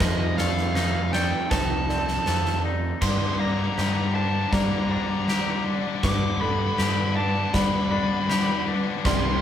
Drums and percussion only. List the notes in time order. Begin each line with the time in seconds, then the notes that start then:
0.00 kick, snare
0.38 snare
0.57 snare
0.75 snare
1.13 snare
1.51 kick, snare
1.89 snare
2.08 snare
2.26 snare
2.45 snare
3.02 kick, snare, crash
3.78 snare
4.52 kick, snare
5.28 snare
6.03 kick, snare
6.78 snare
7.54 kick, snare
8.30 snare
9.05 kick, snare